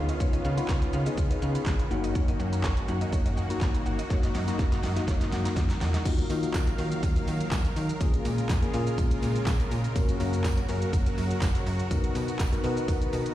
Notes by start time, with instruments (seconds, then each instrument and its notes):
Already playing: fm bass D2, supersaw synth D#3 B3 C#4 F4
0.09 synth pluck D#5, closed hi-hat, shaker
0.20 fm bass C#2, tine electric piano B3 D#4 F4, synth pluck C#5, kick, shaker
0.33 fm bass C#2, synth pluck D#5, closed hi-hat, shaker
0.45 fm bass C#3, synth pluck F5, shaker
0.57 tine electric piano B3 D#4 F4, synth pluck B5, closed hi-hat, shaker
0.69 fm bass C#2, synth pluck C#6, kick, snare, clap, shaker
0.82 synth pluck B5, closed hi-hat, shaker
0.93 fm bass C#3, synth pluck F5, shaker
1.06 tine electric piano B3 D#4 G#4, synth pluck D#5, closed hi-hat, shaker
1.18 fm bass C#2, synth pluck C#5, kick, shaker
1.31 synth pluck D#5, closed hi-hat, shaker
1.42 fm bass C#3, synth pluck F5, shaker
1.55 synth pluck B5, closed hi-hat, shaker
1.66 fm bass G1, kick, snare, clap, shaker
1.79 synth pluck B5, closed hi-hat, shaker
1.91 fm bass F#1, tine electric piano A#3 D#4 F#4, supersaw synth A#3 F#4, synth pluck F#5, shaker
2.04 synth pluck D#5, closed hi-hat, shaker
2.15 synth pluck C#5, kick, shaker
2.28 fm bass F#1, synth pluck D#5, closed hi-hat, shaker
2.40 fm bass F#2, synth pluck F#5, shaker
2.52 synth pluck A#5, closed hi-hat, shaker
2.64 fm bass F#1, synth pluck C#6, kick, snare, clap, shaker
2.77 synth pluck A#5, closed hi-hat, shaker
2.88 fm bass F#2, tine electric piano A#3 D#4 F#4, synth pluck F#5, shaker
3.01 synth pluck D#5, closed hi-hat, shaker
3.13 fm bass F#1, synth pluck C#5, kick, shaker
3.26 synth pluck D#5, closed hi-hat, shaker
3.37 fm bass F#2, synth pluck F#5, shaker
3.50 tine electric piano A#3 D#4 F#4, synth pluck A#5, closed hi-hat, shaker
3.61 fm bass G#1, kick, snare, clap, shaker
3.74 synth pluck A#5, closed hi-hat, shaker
3.86 fm bass G1, supersaw synth D#4, synth pluck F#5, shaker
3.99 synth pluck D#5, closed hi-hat, shaker
4.10 fm bass F#1, tine electric piano A#3 D#4 F#4, synth pluck C#5, kick, snare, shaker
4.23 fm bass F#1, synth pluck D#5, snare, closed hi-hat, shaker
4.35 fm bass F#2, synth pluck F#5, snare, open hi-hat, shaker
4.47 tine electric piano A#3 D#4 F#4, synth pluck A#5, snare, closed hi-hat, shaker
4.59 fm bass F#1, synth pluck C#6, kick, snare, shaker
4.72 synth pluck A#5, snare, closed hi-hat, shaker
4.83 fm bass F#2, synth pluck F#5, snare, open hi-hat, shaker
4.96 tine electric piano A#3 D#4 F#4, synth pluck D#5, snare, closed hi-hat, shaker
5.08 fm bass F#1, synth pluck C#5, kick, snare, shaker
5.21 synth pluck D#5, snare, closed hi-hat, shaker
5.32 fm bass F#2, synth pluck F#5, snare, open hi-hat, shaker
5.45 synth pluck A#5, snare, closed hi-hat, shaker
5.56 fm bass F2, kick, snare, shaker
5.70 synth pluck A#5, snare, closed hi-hat, shaker
5.81 fm bass E2, synth pluck F#5, snare, open hi-hat, shaker
5.94 synth pluck D#5, snare, closed hi-hat, shaker
6.05 fm bass D#2, supersaw synth D#3 F#3 A#4 F5, tine electric piano A#3 D#4 F4 F#4, kick, closed hi-hat, crash, tambourine, shaker
6.18 closed hi-hat, shaker
6.29 fm bass D#3, tine electric piano A#3 D#4 F4 F#4, open hi-hat, tambourine, shaker
6.43 closed hi-hat, shaker
6.54 fm bass A#1, kick, snare, clap, closed hi-hat, tambourine, shaker
6.67 closed hi-hat, shaker
6.78 fm bass D#3, tine electric piano A#3 D#4 F4 F#4, open hi-hat, shaker
6.92 closed hi-hat, shaker
7.03 fm bass D#2, kick, closed hi-hat, tambourine, shaker
7.16 closed hi-hat, shaker
7.27 fm bass D#3, open hi-hat, tambourine, shaker
7.40 closed hi-hat, shaker
7.51 fm bass D#2, kick, snare, clap, closed hi-hat, tambourine, shaker
7.65 closed hi-hat, shaker
7.76 fm bass D#3, open hi-hat, tambourine, shaker
7.89 closed hi-hat, shaker
8.00 fm bass A#1, supersaw synth C#3 G#3 F4, tine electric piano A#3 C#4 F4 G#4, kick, closed hi-hat, tambourine, shaker
8.14 closed hi-hat, shaker
8.25 fm bass A#2, open hi-hat, tambourine, shaker
8.38 closed hi-hat, shaker
8.49 fm bass F2, kick, snare, clap, closed hi-hat, tambourine, shaker
8.62 tine electric piano A#3 C#4 F4 G#4, closed hi-hat, shaker
8.73 fm bass A#2, tine electric piano A#3 C#4 F4 G#4, open hi-hat, shaker
8.87 closed hi-hat, shaker
8.98 fm bass A#1, kick, closed hi-hat, tambourine, shaker
9.11 closed hi-hat, shaker
9.23 fm bass A#2, open hi-hat, tambourine, shaker
9.36 closed hi-hat, shaker
9.47 fm bass A#1, kick, snare, clap, closed hi-hat, tambourine, shaker
9.60 closed hi-hat, shaker
9.71 fm bass A#2, open hi-hat, tambourine, shaker
9.84 closed hi-hat, shaker
9.95 fm bass F#1, supersaw synth F#3 F#4, tine electric piano A#3 C#4 F#4 A#4, kick, closed hi-hat, tambourine, shaker
10.09 closed hi-hat, shaker
10.20 fm bass F#2, tine electric piano A#3 C#4 F#4 A#4, open hi-hat, tambourine, shaker
10.33 closed hi-hat, shaker
10.44 fm bass C#2, kick, snare, clap, closed hi-hat, tambourine, shaker
10.58 closed hi-hat, shaker
10.69 fm bass F#2, tine electric piano A#3 C#4 F#4 A#4, open hi-hat, shaker
10.82 closed hi-hat, shaker
10.93 fm bass F#1, kick, closed hi-hat, tambourine, shaker
11.06 closed hi-hat, shaker
11.18 fm bass F#2, open hi-hat, tambourine, shaker
11.31 closed hi-hat, shaker
11.42 fm bass F#1, kick, snare, clap, closed hi-hat, tambourine, shaker
11.55 closed hi-hat, shaker
11.66 fm bass F#2, open hi-hat, tambourine, shaker
11.80 closed hi-hat, shaker
11.91 fm bass B1, supersaw synth D#3 B3, tine electric piano B3 D#4 F#4 A#4, kick, closed hi-hat, tambourine, shaker
12.04 closed hi-hat, shaker
12.15 fm bass B2, open hi-hat, tambourine, shaker
12.28 closed hi-hat, shaker
12.39 fm bass F#1, kick, snare, clap, closed hi-hat, tambourine, shaker
12.52 tine electric piano B3 D#4 F#4 A#4, closed hi-hat, shaker
12.64 fm bass B2, tine electric piano B3 D#4 F#4 A#4, open hi-hat, shaker
12.77 closed hi-hat, shaker
12.88 fm bass B1, kick, closed hi-hat, tambourine, shaker
13.02 closed hi-hat, shaker
13.13 fm bass B2, tine electric piano A#5, open hi-hat, tambourine, shaker
13.26 closed hi-hat, shaker